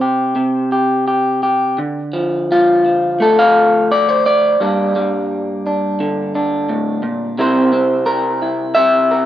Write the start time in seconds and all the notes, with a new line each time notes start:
Already playing: C3 C4 C5
0.01 G4
0.36 C3
0.72 G4
1.08 G4
1.43 G4
1.78 D3
2.13 F3
2.52 F4
2.85 F3
3.20 A3 A4
3.39 F5
3.92 D5
4.09 C5
4.26 D5
4.60 G2 G3 A#3 D4
4.96 G3
5.67 D4
6.00 D3
6.35 D4
6.69 A2
7.03 A#2
7.38 C3 C4 E4 A#4 C5
7.73 C4
8.06 A#4
8.42 E4
8.75 C3 E5
9.11 A#4